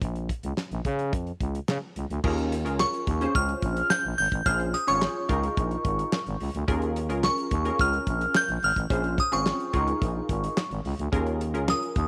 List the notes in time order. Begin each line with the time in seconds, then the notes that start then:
0.02 A#1, kick, closed hi-hat
0.16 closed hi-hat
0.29 kick, closed hi-hat
0.43 C#2, closed hi-hat
0.57 snare, clap
0.71 A#1, closed hi-hat
0.85 C#3, kick, closed hi-hat
0.99 closed hi-hat
1.13 F2, kick, closed hi-hat
1.27 closed hi-hat
1.40 C#2, kick, closed hi-hat
1.55 closed hi-hat
1.68 C#3, snare, clap
1.96 C#2, closed hi-hat
2.10 D2, closed hi-hat
2.24 D#2 C#4 F4 G#4 A#4, kick, crash
2.38 closed hi-hat
2.52 closed hi-hat
2.65 C#2 C#4 F4 G#4 A#4, closed hi-hat
2.80 C#6, snare, clap
2.94 closed hi-hat
3.07 D#2, kick, closed hi-hat
3.21 C#4 F4 G#4 C5, closed hi-hat
3.35 C#2 F6, kick, closed hi-hat
3.49 closed hi-hat
3.62 A#1, kick, closed hi-hat
3.77 closed hi-hat
3.90 G6, snare, clap
4.05 A#1
4.18 G#1 G6, open hi-hat
4.32 A1, kick, closed hi-hat
4.46 A#1 C#4 F4 G#4 C5 F6, kick, closed hi-hat
4.60 closed hi-hat
4.74 D#6, closed hi-hat
4.87 G#1 C#4 F4 G#4 C#5 C#6, closed hi-hat
5.02 snare, clap
5.29 C#2 D#4 F4 G#4 A#4, kick, closed hi-hat
5.43 closed hi-hat
5.57 A#1, kick, closed hi-hat
5.71 closed hi-hat
5.85 G#1, kick, closed hi-hat
5.99 closed hi-hat
6.13 snare, clap
6.26 G#1, closed hi-hat
6.40 C#2, open hi-hat
6.55 D2, closed hi-hat
6.68 D#2 C#4 F4 G#4 A#4, kick, closed hi-hat
6.82 closed hi-hat
6.96 closed hi-hat
7.09 C#2 C#4 F4 G#4 A#4, closed hi-hat
7.24 C#6, snare, clap
7.38 closed hi-hat
7.51 D#2, kick, closed hi-hat
7.65 C#4 F4 G#4 A#4, closed hi-hat
7.79 C#2 F6, kick, closed hi-hat
7.93 closed hi-hat
8.07 A#1, kick, closed hi-hat
8.21 closed hi-hat
8.35 G6, snare, clap
8.48 A#1, closed hi-hat
8.63 G#1 F6, open hi-hat
8.76 A1, kick, closed hi-hat
8.90 A#1 C#4 F4 G#4 C5, kick, closed hi-hat
9.04 closed hi-hat
9.18 D#6, kick, closed hi-hat
9.32 G#1 C4 C#4 F4 G#4 C#6, closed hi-hat
9.46 snare, clap
9.60 closed hi-hat
9.73 C#2 D#4 F4 G#4 A#4, kick, closed hi-hat
9.87 closed hi-hat
10.02 A#1, kick, closed hi-hat
10.29 G#1, kick, closed hi-hat
10.44 closed hi-hat
10.57 snare, clap
10.71 G#1, closed hi-hat
10.85 C#2, open hi-hat
10.99 D2, closed hi-hat
11.12 D#2 C#4 F4 G#4 A#4, kick, closed hi-hat
11.26 closed hi-hat
11.41 closed hi-hat
11.54 C#2 C#4 F4 G#4 A#4, closed hi-hat
11.68 D#6, snare, clap
11.82 closed hi-hat
11.96 D#2, kick, closed hi-hat